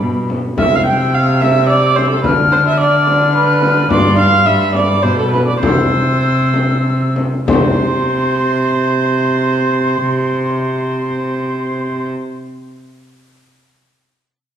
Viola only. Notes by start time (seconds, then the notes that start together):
0.58 E5
0.75 F5
0.86 G5
1.14 F5
1.41 E5
1.69 D5
1.95 C5
2.10 A4
2.23 B4
2.52 C5
2.67 E5
2.80 D5
3.35 B4
3.91 D5
4.19 F5
4.46 E5
4.75 D5
5.03 C5
5.19 A4
5.31 B4
5.47 D5
5.60 C5
7.49 C5